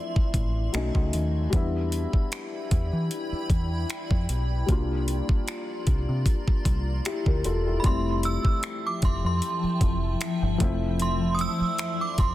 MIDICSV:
0, 0, Header, 1, 7, 480
1, 0, Start_track
1, 0, Tempo, 789474
1, 927, Time_signature, 4, 2, 24, 8
1, 7507, End_track
2, 0, Start_track
2, 0, Title_t, "Synth bell"
2, 0, Program_c, 0, 98
2, 4741, Note_on_c, 0, 83, 65
2, 4774, Note_off_c, 0, 83, 0
2, 4779, Note_on_c, 0, 84, 83
2, 4864, Note_off_c, 0, 84, 0
2, 5018, Note_on_c, 0, 88, 104
2, 5390, Note_on_c, 0, 86, 82
2, 5393, Note_off_c, 0, 88, 0
2, 5437, Note_off_c, 0, 86, 0
2, 5501, Note_on_c, 0, 84, 86
2, 5624, Note_off_c, 0, 84, 0
2, 5632, Note_on_c, 0, 84, 77
2, 6080, Note_off_c, 0, 84, 0
2, 6700, Note_on_c, 0, 84, 89
2, 6898, Note_on_c, 0, 87, 82
2, 6900, Note_off_c, 0, 84, 0
2, 6933, Note_off_c, 0, 87, 0
2, 6938, Note_on_c, 0, 88, 112
2, 7304, Note_on_c, 0, 86, 89
2, 7313, Note_off_c, 0, 88, 0
2, 7403, Note_off_c, 0, 86, 0
2, 7415, Note_on_c, 0, 84, 86
2, 7507, Note_off_c, 0, 84, 0
2, 7507, End_track
3, 0, Start_track
3, 0, Title_t, "Ambient pad"
3, 0, Program_c, 1, 92
3, 0, Note_on_c, 1, 53, 81
3, 0, Note_on_c, 1, 74, 72
3, 0, Note_on_c, 1, 76, 75
3, 0, Note_on_c, 1, 84, 82
3, 423, Note_off_c, 1, 53, 0
3, 423, Note_off_c, 1, 76, 0
3, 431, Note_off_c, 1, 84, 0
3, 432, Note_off_c, 1, 74, 0
3, 927, Note_on_c, 1, 64, 79
3, 927, Note_on_c, 1, 79, 77
3, 927, Note_on_c, 1, 83, 86
3, 928, Note_on_c, 1, 74, 69
3, 2828, Note_off_c, 1, 64, 0
3, 2828, Note_off_c, 1, 79, 0
3, 2828, Note_off_c, 1, 83, 0
3, 2847, Note_on_c, 1, 65, 81
3, 2847, Note_on_c, 1, 82, 74
3, 2847, Note_on_c, 1, 84, 88
3, 4744, Note_off_c, 1, 74, 0
3, 4748, Note_off_c, 1, 65, 0
3, 4748, Note_off_c, 1, 82, 0
3, 4748, Note_off_c, 1, 84, 0
3, 4769, Note_on_c, 1, 53, 77
3, 4769, Note_on_c, 1, 79, 70
3, 4769, Note_on_c, 1, 81, 91
3, 4770, Note_on_c, 1, 76, 73
3, 6431, Note_off_c, 1, 79, 0
3, 6431, Note_off_c, 1, 81, 0
3, 6447, Note_on_c, 1, 74, 70
3, 6447, Note_on_c, 1, 84, 85
3, 7507, Note_off_c, 1, 53, 0
3, 7507, Note_off_c, 1, 74, 0
3, 7507, Note_off_c, 1, 76, 0
3, 7507, Note_off_c, 1, 84, 0
3, 7507, End_track
4, 0, Start_track
4, 0, Title_t, "Felt piano"
4, 0, Program_c, 2, 0
4, 0, Control_c, 2, 64, 127
4, 0, Note_on_c, 2, 53, 70
4, 0, Note_on_c, 2, 57, 68
4, 0, Note_on_c, 2, 60, 67
4, 0, Note_on_c, 2, 64, 79
4, 417, Note_off_c, 2, 53, 0
4, 422, Note_off_c, 2, 57, 0
4, 428, Note_off_c, 2, 60, 0
4, 434, Note_off_c, 2, 64, 0
4, 442, Note_on_c, 2, 54, 75
4, 449, Note_on_c, 2, 57, 69
4, 454, Note_on_c, 2, 61, 70
4, 456, Control_c, 2, 64, 0
4, 460, Note_on_c, 2, 63, 84
4, 552, Control_c, 2, 64, 127
4, 912, Note_on_c, 2, 55, 70
4, 925, Note_off_c, 2, 54, 0
4, 926, Note_on_c, 2, 59, 62
4, 928, Note_off_c, 2, 57, 0
4, 931, Note_off_c, 2, 61, 0
4, 934, Note_off_c, 2, 63, 0
4, 934, Control_c, 2, 64, 0
4, 936, Note_on_c, 2, 62, 63
4, 947, Note_on_c, 2, 64, 80
4, 1052, Control_c, 2, 64, 127
4, 2816, Note_off_c, 2, 55, 0
4, 2822, Note_off_c, 2, 59, 0
4, 2828, Note_off_c, 2, 62, 0
4, 2833, Note_off_c, 2, 64, 0
4, 2834, Note_on_c, 2, 55, 65
4, 2846, Note_on_c, 2, 58, 66
4, 2856, Control_c, 2, 64, 0
4, 2857, Note_on_c, 2, 62, 60
4, 2869, Note_on_c, 2, 65, 80
4, 2975, Control_c, 2, 64, 127
4, 4274, Note_off_c, 2, 65, 0
4, 4293, Note_on_c, 2, 67, 63
4, 4296, Note_on_c, 2, 64, 55
4, 4414, Note_off_c, 2, 67, 0
4, 4415, Note_off_c, 2, 64, 0
4, 4422, Note_on_c, 2, 70, 68
4, 4426, Note_on_c, 2, 67, 58
4, 4525, Note_off_c, 2, 70, 0
4, 4527, Note_off_c, 2, 67, 0
4, 4531, Note_on_c, 2, 69, 67
4, 4535, Note_on_c, 2, 65, 58
4, 4652, Note_off_c, 2, 69, 0
4, 4655, Note_off_c, 2, 65, 0
4, 4662, Note_on_c, 2, 67, 59
4, 4666, Note_on_c, 2, 64, 51
4, 4737, Note_off_c, 2, 55, 0
4, 4742, Note_off_c, 2, 58, 0
4, 4748, Note_off_c, 2, 62, 0
4, 4754, Note_on_c, 2, 55, 60
4, 4766, Note_on_c, 2, 57, 56
4, 4776, Control_c, 2, 64, 0
4, 4776, Note_on_c, 2, 60, 55
4, 4779, Note_off_c, 2, 64, 0
4, 4788, Note_on_c, 2, 64, 68
4, 4888, Note_off_c, 2, 67, 0
4, 4899, Control_c, 2, 64, 127
4, 6416, Note_off_c, 2, 55, 0
4, 6422, Note_off_c, 2, 57, 0
4, 6427, Note_off_c, 2, 60, 0
4, 6433, Note_off_c, 2, 64, 0
4, 6434, Note_on_c, 2, 53, 74
4, 6445, Note_on_c, 2, 57, 69
4, 6455, Control_c, 2, 64, 0
4, 6456, Note_on_c, 2, 60, 71
4, 6467, Note_on_c, 2, 64, 86
4, 6560, Control_c, 2, 64, 127
4, 7507, Note_off_c, 2, 53, 0
4, 7507, Note_off_c, 2, 57, 0
4, 7507, Note_off_c, 2, 60, 0
4, 7507, Note_off_c, 2, 64, 0
4, 7507, End_track
5, 0, Start_track
5, 0, Title_t, "Fingered electric bass"
5, 0, Program_c, 3, 33
5, 208, Note_on_c, 3, 33, 93
5, 413, Note_off_c, 3, 33, 0
5, 452, Note_on_c, 3, 35, 88
5, 561, Note_off_c, 3, 35, 0
5, 578, Note_on_c, 3, 37, 87
5, 672, Note_off_c, 3, 37, 0
5, 691, Note_on_c, 3, 39, 86
5, 894, Note_off_c, 3, 39, 0
5, 932, Note_on_c, 3, 40, 96
5, 1246, Note_off_c, 3, 40, 0
5, 1652, Note_on_c, 3, 40, 90
5, 1761, Note_off_c, 3, 40, 0
5, 1779, Note_on_c, 3, 52, 87
5, 1873, Note_off_c, 3, 52, 0
5, 2128, Note_on_c, 3, 40, 93
5, 2333, Note_off_c, 3, 40, 0
5, 2499, Note_on_c, 3, 41, 91
5, 2592, Note_off_c, 3, 41, 0
5, 2611, Note_on_c, 3, 35, 81
5, 2814, Note_off_c, 3, 35, 0
5, 2851, Note_on_c, 3, 36, 107
5, 3165, Note_off_c, 3, 36, 0
5, 3571, Note_on_c, 3, 36, 98
5, 3680, Note_off_c, 3, 36, 0
5, 3701, Note_on_c, 3, 48, 89
5, 3794, Note_off_c, 3, 48, 0
5, 4047, Note_on_c, 3, 36, 91
5, 4252, Note_off_c, 3, 36, 0
5, 4418, Note_on_c, 3, 38, 85
5, 4512, Note_off_c, 3, 38, 0
5, 4531, Note_on_c, 3, 28, 91
5, 4735, Note_off_c, 3, 28, 0
5, 4770, Note_on_c, 3, 29, 109
5, 5085, Note_off_c, 3, 29, 0
5, 5489, Note_on_c, 3, 29, 86
5, 5599, Note_off_c, 3, 29, 0
5, 5620, Note_on_c, 3, 41, 90
5, 5713, Note_off_c, 3, 41, 0
5, 5966, Note_on_c, 3, 29, 95
5, 6172, Note_off_c, 3, 29, 0
5, 6340, Note_on_c, 3, 31, 85
5, 6433, Note_off_c, 3, 31, 0
5, 6448, Note_on_c, 3, 29, 93
5, 6969, Note_off_c, 3, 29, 0
5, 7409, Note_on_c, 3, 29, 91
5, 7507, Note_off_c, 3, 29, 0
5, 7507, End_track
6, 0, Start_track
6, 0, Title_t, "Muted fingered electric bass strokes"
6, 100, Note_on_c, 9, 29, 46
6, 160, Note_off_c, 9, 29, 0
6, 1299, Note_on_c, 9, 29, 48
6, 1360, Note_off_c, 9, 29, 0
6, 2020, Note_on_c, 9, 29, 45
6, 2081, Note_off_c, 9, 29, 0
6, 3219, Note_on_c, 9, 29, 47
6, 3279, Note_off_c, 9, 29, 0
6, 3939, Note_on_c, 9, 29, 47
6, 4000, Note_off_c, 9, 29, 0
6, 5138, Note_on_c, 9, 29, 44
6, 5198, Note_off_c, 9, 29, 0
6, 5859, Note_on_c, 9, 29, 48
6, 5920, Note_off_c, 9, 29, 0
6, 7060, Note_on_c, 9, 29, 48
6, 7121, Note_off_c, 9, 29, 0
6, 7507, End_track
7, 0, Start_track
7, 0, Title_t, "Drums"
7, 98, Note_on_c, 9, 36, 93
7, 159, Note_off_c, 9, 36, 0
7, 206, Note_on_c, 9, 36, 85
7, 208, Note_on_c, 9, 42, 60
7, 266, Note_off_c, 9, 36, 0
7, 268, Note_off_c, 9, 42, 0
7, 448, Note_on_c, 9, 42, 67
7, 454, Note_on_c, 9, 26, 106
7, 509, Note_off_c, 9, 42, 0
7, 514, Note_off_c, 9, 26, 0
7, 577, Note_on_c, 9, 36, 88
7, 637, Note_off_c, 9, 36, 0
7, 688, Note_on_c, 9, 42, 78
7, 749, Note_off_c, 9, 42, 0
7, 929, Note_on_c, 9, 36, 109
7, 929, Note_on_c, 9, 42, 60
7, 990, Note_off_c, 9, 36, 0
7, 990, Note_off_c, 9, 42, 0
7, 1168, Note_on_c, 9, 42, 59
7, 1229, Note_off_c, 9, 42, 0
7, 1298, Note_on_c, 9, 36, 79
7, 1358, Note_off_c, 9, 36, 0
7, 1409, Note_on_c, 9, 42, 63
7, 1415, Note_on_c, 9, 26, 111
7, 1470, Note_off_c, 9, 42, 0
7, 1475, Note_off_c, 9, 26, 0
7, 1649, Note_on_c, 9, 42, 64
7, 1650, Note_on_c, 9, 36, 85
7, 1710, Note_off_c, 9, 42, 0
7, 1711, Note_off_c, 9, 36, 0
7, 1890, Note_on_c, 9, 42, 62
7, 1951, Note_off_c, 9, 42, 0
7, 2126, Note_on_c, 9, 36, 89
7, 2129, Note_on_c, 9, 42, 60
7, 2187, Note_off_c, 9, 36, 0
7, 2190, Note_off_c, 9, 42, 0
7, 2369, Note_on_c, 9, 42, 69
7, 2374, Note_on_c, 9, 26, 110
7, 2429, Note_off_c, 9, 42, 0
7, 2435, Note_off_c, 9, 26, 0
7, 2497, Note_on_c, 9, 36, 89
7, 2558, Note_off_c, 9, 36, 0
7, 2609, Note_on_c, 9, 42, 74
7, 2669, Note_off_c, 9, 42, 0
7, 2849, Note_on_c, 9, 36, 116
7, 2849, Note_on_c, 9, 42, 63
7, 2910, Note_off_c, 9, 36, 0
7, 2910, Note_off_c, 9, 42, 0
7, 3087, Note_on_c, 9, 42, 60
7, 3148, Note_off_c, 9, 42, 0
7, 3217, Note_on_c, 9, 36, 85
7, 3278, Note_off_c, 9, 36, 0
7, 3329, Note_on_c, 9, 42, 66
7, 3335, Note_on_c, 9, 26, 109
7, 3390, Note_off_c, 9, 42, 0
7, 3395, Note_off_c, 9, 26, 0
7, 3567, Note_on_c, 9, 42, 63
7, 3569, Note_on_c, 9, 36, 91
7, 3628, Note_off_c, 9, 42, 0
7, 3630, Note_off_c, 9, 36, 0
7, 3804, Note_on_c, 9, 36, 95
7, 3808, Note_on_c, 9, 42, 63
7, 3865, Note_off_c, 9, 36, 0
7, 3869, Note_off_c, 9, 42, 0
7, 3937, Note_on_c, 9, 36, 95
7, 3998, Note_off_c, 9, 36, 0
7, 4045, Note_on_c, 9, 36, 84
7, 4048, Note_on_c, 9, 42, 64
7, 4106, Note_off_c, 9, 36, 0
7, 4108, Note_off_c, 9, 42, 0
7, 4288, Note_on_c, 9, 42, 64
7, 4293, Note_on_c, 9, 26, 109
7, 4348, Note_off_c, 9, 42, 0
7, 4354, Note_off_c, 9, 26, 0
7, 4415, Note_on_c, 9, 36, 90
7, 4476, Note_off_c, 9, 36, 0
7, 4526, Note_on_c, 9, 42, 76
7, 4587, Note_off_c, 9, 42, 0
7, 4766, Note_on_c, 9, 42, 65
7, 4768, Note_on_c, 9, 36, 113
7, 4827, Note_off_c, 9, 42, 0
7, 4828, Note_off_c, 9, 36, 0
7, 5005, Note_on_c, 9, 42, 62
7, 5066, Note_off_c, 9, 42, 0
7, 5135, Note_on_c, 9, 36, 89
7, 5196, Note_off_c, 9, 36, 0
7, 5246, Note_on_c, 9, 42, 68
7, 5251, Note_on_c, 9, 26, 109
7, 5307, Note_off_c, 9, 42, 0
7, 5312, Note_off_c, 9, 26, 0
7, 5484, Note_on_c, 9, 42, 63
7, 5488, Note_on_c, 9, 36, 94
7, 5545, Note_off_c, 9, 42, 0
7, 5548, Note_off_c, 9, 36, 0
7, 5727, Note_on_c, 9, 42, 64
7, 5788, Note_off_c, 9, 42, 0
7, 5964, Note_on_c, 9, 36, 88
7, 5965, Note_on_c, 9, 42, 64
7, 6024, Note_off_c, 9, 36, 0
7, 6025, Note_off_c, 9, 42, 0
7, 6206, Note_on_c, 9, 42, 71
7, 6211, Note_on_c, 9, 26, 103
7, 6266, Note_off_c, 9, 42, 0
7, 6272, Note_off_c, 9, 26, 0
7, 6446, Note_on_c, 9, 36, 108
7, 6446, Note_on_c, 9, 42, 80
7, 6507, Note_off_c, 9, 36, 0
7, 6507, Note_off_c, 9, 42, 0
7, 6685, Note_on_c, 9, 42, 63
7, 6746, Note_off_c, 9, 42, 0
7, 6924, Note_on_c, 9, 42, 61
7, 6985, Note_off_c, 9, 42, 0
7, 7165, Note_on_c, 9, 42, 66
7, 7170, Note_on_c, 9, 26, 114
7, 7226, Note_off_c, 9, 42, 0
7, 7231, Note_off_c, 9, 26, 0
7, 7405, Note_on_c, 9, 42, 63
7, 7407, Note_on_c, 9, 36, 97
7, 7466, Note_off_c, 9, 42, 0
7, 7468, Note_off_c, 9, 36, 0
7, 7507, End_track
0, 0, End_of_file